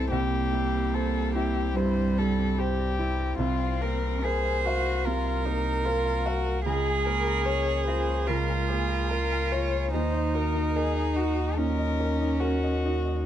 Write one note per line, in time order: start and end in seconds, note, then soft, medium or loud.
0.00 0.11 C2 medium
0.00 0.14 G2 soft
0.00 0.14 G3 soft
0.00 0.37 E4 soft
0.00 0.51 E4 soft
0.00 2.57 G4 soft
0.00 0.10 A4 medium
0.00 0.14 C5 soft
0.10 3.34 C2 medium
0.10 1.73 C2 medium
0.10 1.72 A#3 medium
0.10 0.73 C4 medium
0.10 0.96 G4 medium
0.52 1.19 G3 soft
0.52 1.54 E4 soft
0.74 1.34 C4 medium
0.94 1.35 A4 medium
0.94 1.60 C5 soft
1.35 1.75 C4 medium
1.35 2.01 E4 soft
1.35 1.78 G4 medium
1.56 3.42 E4 soft
1.76 2.42 G2 soft
1.76 2.95 G3 medium
1.76 2.37 C4 medium
1.76 2.20 C5 medium
2.18 2.83 G3 soft
2.18 2.60 A4 medium
2.38 2.98 C4 medium
2.58 3.42 G4 soft
2.58 3.37 G4 medium
2.58 3.23 C5 soft
2.79 3.18 A#4 soft
2.99 6.69 C4 medium
2.99 3.39 E4 soft
3.19 3.79 A#4 soft
3.38 6.67 C2 medium
3.38 5.02 C2 medium
3.38 4.25 C4 medium
3.38 3.83 F4 medium
3.59 4.23 F5 medium
3.81 4.50 A#3 soft
3.81 4.84 A#4 medium
3.81 4.25 A#4 medium
4.23 4.67 G#4 medium
4.23 4.90 A#4 soft
4.23 5.06 C5 medium
4.23 4.44 F5 soft
4.45 5.24 F5 soft
4.66 5.07 F#4 medium
4.66 5.30 F5 soft
4.86 6.65 A#4 soft
5.05 5.70 C3 soft
5.05 5.47 F4 medium
5.05 6.64 A#4 medium
5.25 6.04 F5 soft
5.45 6.09 A#3 soft
5.45 5.87 D#4 medium
5.85 6.27 F4 medium
5.85 6.50 A#4 soft
5.85 6.69 C5 medium
6.05 6.45 F5 soft
6.26 6.64 F#4 medium
6.26 6.66 F5 soft
6.46 9.10 F5 soft
6.65 9.95 C#2 medium
6.65 8.25 C#2 medium
6.65 8.28 G#4 medium
6.65 7.08 G#4 medium
6.65 7.26 A#4 medium
6.86 7.46 G#5 soft
7.06 7.72 A#3 soft
7.06 9.97 C#4 soft
7.06 7.47 A#4 medium
7.27 7.86 A#4 medium
7.46 8.12 A#4 soft
7.46 7.86 C#5 medium
7.46 7.67 G#5 soft
7.68 8.48 G#5 medium
7.87 8.53 F4 soft
7.87 8.28 A#4 medium
7.87 8.29 C5 medium
8.08 9.96 C#5 soft
8.27 9.89 C#2 soft
8.27 9.92 F4 medium
8.27 8.70 A#4 medium
8.27 8.89 A#4 medium
8.49 9.31 G#5 soft
8.69 9.36 A#3 soft
8.69 9.11 G#4 medium
8.90 9.52 A#4 medium
9.09 9.53 A#4 medium
9.09 9.77 A#4 soft
9.09 9.97 F5 medium
9.32 9.72 G#5 soft
9.52 9.94 F4 soft
9.52 12.41 A#4 medium
9.52 9.93 C#5 medium
9.73 9.97 G#5 soft
9.93 11.53 D#2 medium
9.93 13.26 D#2 medium
9.93 11.59 D#4 medium
9.93 10.54 D#4 medium
9.93 10.36 C5 medium
10.14 10.74 D#5 soft
10.34 11.00 A#3 soft
10.34 11.36 F#4 soft
10.34 10.78 A#4 medium
10.55 11.15 D#4 medium
10.75 11.18 G#4 medium
10.75 11.41 A#4 soft
10.75 10.94 D#5 soft
10.96 11.77 D#5 soft
11.16 11.57 D#4 medium
11.16 11.58 F#4 medium
11.16 11.83 F#4 soft
11.38 13.26 F#4 soft
11.57 12.25 A#2 soft
11.57 13.26 C#4 medium
11.57 12.20 D#4 medium
11.57 12.42 A#4 medium
11.79 12.62 D#5 soft
12.00 12.68 A#3 soft
12.21 12.84 D#4 medium
12.40 13.26 F#4 medium
12.40 13.26 A#4 soft
12.40 13.11 A#4 soft
12.63 13.06 D#5 soft
12.85 13.26 D#4 medium
12.85 13.26 F#4 soft
13.07 13.26 D#5 soft